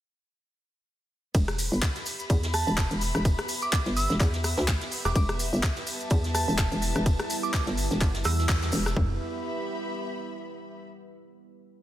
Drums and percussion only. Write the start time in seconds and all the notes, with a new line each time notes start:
1.35 kick, closed hi-hat, ride, tambourine, maracas
1.48 cross-stick, closed hi-hat, maracas
1.58 open hi-hat, tambourine, maracas
1.73 maracas
1.82 kick, snare, clap, closed hi-hat, ride, tambourine, maracas
1.95 snare, closed hi-hat, maracas
2.06 open hi-hat, tambourine, maracas
2.19 closed hi-hat, maracas
2.30 kick, closed hi-hat, ride, tambourine, maracas
2.43 snare, closed hi-hat, maracas
2.53 cross-stick, open hi-hat, tambourine, maracas
2.67 maracas
2.77 kick, snare, clap, closed hi-hat, ride, tambourine, maracas
2.91 closed hi-hat, maracas
3.01 open hi-hat, tambourine, maracas
3.15 cross-stick, closed hi-hat, maracas
3.25 kick, closed hi-hat, ride, tambourine, maracas
3.39 cross-stick, closed hi-hat, maracas
3.48 open hi-hat, tambourine, maracas
3.62 closed hi-hat, maracas
3.72 kick, snare, clap, closed hi-hat, ride, tambourine, maracas
3.85 snare, closed hi-hat, maracas
3.97 open hi-hat, tambourine, maracas
4.09 snare, closed hi-hat, maracas
4.20 kick, clap, closed hi-hat, ride, tambourine, maracas
4.33 snare, closed hi-hat, maracas
4.44 cross-stick, open hi-hat, tambourine, maracas
4.57 snare, maracas
4.68 kick, snare, clap, closed hi-hat, ride, tambourine, maracas
4.81 snare, closed hi-hat, maracas
4.91 open hi-hat, maracas
5.05 cross-stick, snare, closed hi-hat, maracas
5.15 kick, closed hi-hat, ride, tambourine, maracas
5.29 cross-stick, closed hi-hat, maracas
5.39 open hi-hat, tambourine, maracas
5.53 maracas
5.63 kick, snare, clap, closed hi-hat, ride, tambourine, maracas
5.76 snare, closed hi-hat, maracas
5.87 open hi-hat, tambourine, maracas
6.00 closed hi-hat, maracas
6.10 kick, closed hi-hat, ride, tambourine, maracas
6.24 snare, closed hi-hat, maracas
6.34 cross-stick, open hi-hat, tambourine, maracas
6.49 maracas
6.58 kick, snare, clap, closed hi-hat, ride, tambourine, maracas
6.72 closed hi-hat, maracas
6.82 open hi-hat, tambourine, maracas
6.95 cross-stick, closed hi-hat, maracas
7.06 kick, closed hi-hat, ride, tambourine, maracas
7.19 cross-stick, closed hi-hat, maracas
7.30 open hi-hat, tambourine, maracas
7.43 closed hi-hat, maracas
7.53 kick, snare, clap, closed hi-hat, ride, tambourine, maracas
7.66 snare, closed hi-hat, maracas
7.77 open hi-hat, tambourine, maracas
7.91 snare, closed hi-hat, maracas
8.00 kick, clap, closed hi-hat, ride, tambourine, maracas
8.14 snare, closed hi-hat, maracas
8.24 cross-stick, open hi-hat, tambourine, maracas
8.38 snare, maracas
8.49 kick, snare, clap, closed hi-hat, ride, tambourine, maracas
8.62 snare, closed hi-hat, maracas
8.72 open hi-hat, maracas
8.86 cross-stick, snare, closed hi-hat, maracas
8.97 kick, floor tom